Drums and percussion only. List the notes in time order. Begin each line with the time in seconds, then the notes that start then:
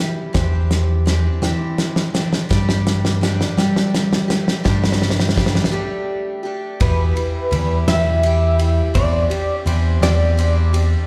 0.34 kick, snare, closed hi-hat
0.71 snare, closed hi-hat
1.07 snare, closed hi-hat
1.43 snare, closed hi-hat
1.78 snare, closed hi-hat
1.96 snare
2.15 snare, closed hi-hat
2.33 snare
2.51 kick, snare, closed hi-hat
2.69 snare
2.87 snare, closed hi-hat
3.05 snare
3.23 snare, closed hi-hat
3.41 snare
3.58 snare, closed hi-hat
3.76 snare
3.94 snare, closed hi-hat
4.13 snare
4.30 snare, closed hi-hat
4.48 snare
4.65 kick, snare
4.84 snare
4.92 snare
5.02 snare
5.10 snare
5.20 snare
5.29 snare
5.37 kick, snare
5.46 snare
5.55 snare
5.64 snare
6.80 kick, ride
7.17 ride
7.52 ride
7.88 snare, ride
8.23 ride
8.59 ride
8.95 kick, ride
9.31 ride
9.67 ride
10.03 snare, ride
10.39 ride
10.74 ride